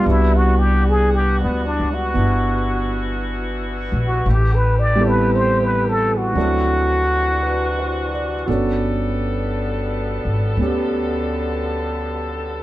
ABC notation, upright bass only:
X:1
M:4/4
L:1/8
Q:"Swing" 1/4=57
K:Cdor
V:1 name="Upright bass" clef=bass
C,,2- (3C,, D,, ^C,, G,,,3 B,,, | A,,,4 D,,4 | G,,,3 _A,,, D,,4 |]